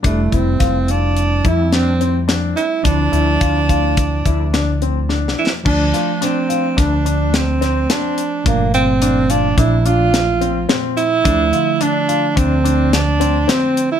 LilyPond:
<<
  \new Staff \with { instrumentName = "Grand piano" } { \time 5/4 \key d \minor \tempo 4 = 107 d'8 e'8 f'8 f'4 e'8 d'8 c'8 d'4 | d'8 e'8 f'8 f'4 e'8 d'8 c'8 d'4 | d'8 f'8 d'8 f'8 d'8 d'4 c'8 c'4 | d'8 f'8 d'8 f'8 d'8 d'4 c'8 c'4 |
d'8 f'8 d'8 f'8 d'8 d'4 c'8 c'4 | }
  \new Staff \with { instrumentName = "Tenor saxophone" } { \time 5/4 \key d \minor a8 c'4 d'4 e'8 c'4 r8 e'8 | d'1 r8 e'8 | d'4 c'4 d'4 c'4 d'4 | bes8 c'4 d'8 e'8 f'4. r8 e'8~ |
e'4 d'4 c'4 d'4 c'8. e'16 | }
  \new Staff \with { instrumentName = "Tine electric piano" } { \time 5/4 \key d \minor <g a e'>1~ <g a e'>4 | <f c' e'>1~ <f c' e'>4 | <f a d'>1~ <f a d'>4 | <bes, f a>1~ <bes, f a>4 |
<d f a>1~ <d f a>4 | }
  \new Staff \with { instrumentName = "Fretless electric bass" } { \clef bass \time 5/4 \key d \minor f,,8 f,,8 f,,4. f,2 r8 | d,8 d,8 d,4. d,2 r8 | d,8 r4. d,2 r4 | g,,2 bes,,2 r4 |
d,8 r4. d,2 r4 | }
  \new DrumStaff \with { instrumentName = "Drums" } \drummode { \time 5/4 <hh bd>8 <hh bd>8 <hh bd sn>8 hh8 hh8 <hh bd>8 <hh sn>8 hh8 <hh sn>8 hh8 | <hh bd>8 hh8 <hh bd>8 <hh bd>8 <hh bd>8 <hh bd>8 <hh sn>8 hh8 \tuplet 3/2 { sn8 sn8 sn8 } | <cymc bd>8 <hh sn>8 <hh sn>8 hh8 <hh bd sn>8 hh8 <hh sn>8 <hh sn>8 <hh sn>8 hh8 | <hh bd>8 hh8 hh8 hh8 <hh bd>8 hh8 <hh sn>8 hh8 <hh sn>8 hh8 |
<hh bd>8 hh8 hh8 hh8 <hh bd>8 hh8 <hh sn>8 hh8 <hh sn>8 hh8 | }
>>